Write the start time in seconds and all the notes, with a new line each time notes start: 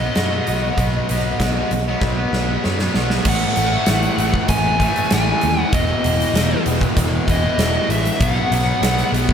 Already playing: D#5
0.00 F#3 B3
0.15 F#2 B2 F#3 B3, snare, closed hi-hat
0.31 F#3 B3
0.47 B1 B2 F#3 B3, closed hi-hat
0.63 F#3 B3
0.77 B1 B2 F#3 B3, kick, closed hi-hat
1.09 B1 B2 F#3 B3, closed hi-hat
1.40 B1 B2 F#3 B3, kick, snare, closed hi-hat
1.57 F#3 B3
1.71 B1, muted distorted electric guitar stroke, closed hi-hat
1.88 F#3 B3
2.01 B1, kick, snare
2.18 F#3 B3
2.33 B1, snare
2.49 F#3 B3
2.64 F#2 B2 F#3 B3, snare
2.79 F#3 B3, snare
2.94 B1 B2 F#3 B3, snare
3.10 F#3 B3, snare
3.25 A1 A2 E3 A3 F#5, kick, crash
3.56 A1 E3 A3, closed hi-hat
3.86 A1 A2 E3 A3, snare, closed hi-hat
4.03 closed hi-hat
4.17 A1 E3 A3, closed hi-hat
4.34 kick
4.48 A1 G#5, kick, closed hi-hat
4.79 E3 A3, kick, closed hi-hat
4.96 closed hi-hat
5.11 A1 A2 E3 A3 G#5, snare, closed hi-hat
5.41 D#2, closed hi-hat
5.61 F#5
5.73 E1 E2 B2 E3 D#5, kick, closed hi-hat
6.04 E1 B2 E3, closed hi-hat
6.20 closed hi-hat
6.34 E1 E2 B2 E3, snare, closed hi-hat
6.66 E1 B2 E3, closed hi-hat
6.81 kick, closed hi-hat
6.97 E1, kick, closed hi-hat
7.28 E1 E3 D#5, kick, closed hi-hat
7.32 B2
7.58 E1 E2 B2 E3, snare, closed hi-hat
7.89 A1 E5, closed hi-hat
8.05 closed hi-hat
8.20 B1 B2 F#3 B3 F#5, kick, closed hi-hat
8.52 B1 F#3 B3, closed hi-hat
8.82 B1 B2 F#3 B3, snare, closed hi-hat
8.98 snare, closed hi-hat
9.12 B1 F#3 B3, closed hi-hat
9.29 kick